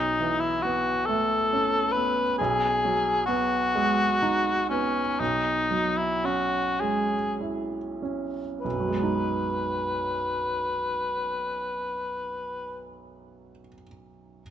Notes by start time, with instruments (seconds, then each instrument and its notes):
Already playing: grand piano B1, cor anglais D#4
0.20 grand piano E3
0.40 cor anglais E4
0.62 grand piano B3, cor anglais F#4
1.06 grand piano A3, cor anglais A4
1.53 grand piano C#4
1.92 cor anglais B4
1.97 grand piano B3
2.38 grand piano B1, cor anglais G#4
2.85 grand piano F#3
3.26 grand piano B3, cor anglais F#4
3.75 grand piano G#3
4.22 grand piano D#4
4.69 grand piano B3, cor anglais C#4
5.20 grand piano B1, cor anglais D#4
5.71 grand piano F#3
5.97 cor anglais E4
6.24 grand piano C#4, cor anglais F#4
6.80 grand piano G#3, cor anglais G#4
7.41 grand piano E4
8.02 grand piano C#4
8.61 grand piano B1, cor anglais B4
8.72 grand piano F#2
8.80 grand piano F#3
8.88 grand piano G#3
8.95 grand piano B3
9.03 grand piano D#4